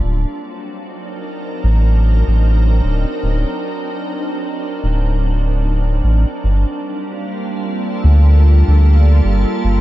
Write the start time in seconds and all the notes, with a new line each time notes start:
Already playing: A#3 D4
0.04 D1
0.08 F#3
0.18 C4
0.69 D#4
0.80 A#4
1.64 A1
2.28 A1
2.84 D1
3.23 D1
4.84 D1
6.04 A1
6.44 G1
6.67 G3 A#3
7.03 F4
7.60 A4
8.04 D2
8.68 D2
9.25 G1
9.64 G1